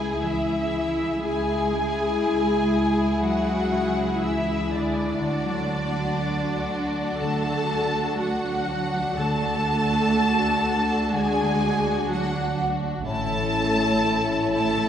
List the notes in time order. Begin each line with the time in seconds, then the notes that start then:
Already playing: C#2 E3 G#3 E4 G#4 G#5
0.00 E4
0.23 E3 E4 G#4 E5
0.47 E4
0.97 G#3
1.21 C#2 G#3 E4 G#4 G#5
1.72 G#3
1.97 E4
2.22 G#4
2.47 E4
2.97 G#3
3.22 F#3 F#4 F#5
3.72 G#3
3.97 E4
4.21 E3 E4 G#4 E5
4.47 E4
4.71 D3 D4 D5
4.96 G#3
5.20 D2 D3 D4 F#4
5.45 F#3
5.69 D4
5.94 F#4
6.43 F#4
6.69 D4
7.20 D3 A3 A4 A5
7.46 D4
7.95 F#4
8.18 F#3 F#4 F#5
8.43 F#4
8.68 D4
9.16 D2 D3 A3 D4 F#4 A4 A5
9.41 D4
9.90 F#4
10.39 F#4
10.63 D4
11.12 D3 G#3 G#4 G#5
11.36 D4
11.85 F#4
12.09 F#3 F#4 A4 F#5
12.34 F#4
12.58 D4
12.82 A3
13.07 A1 A2 A3 C#4 E4 A4 A5
13.31 E3
13.56 A3
13.79 C#4
14.04 E4
14.28 C#4
14.52 A3 A4 A5
14.77 E3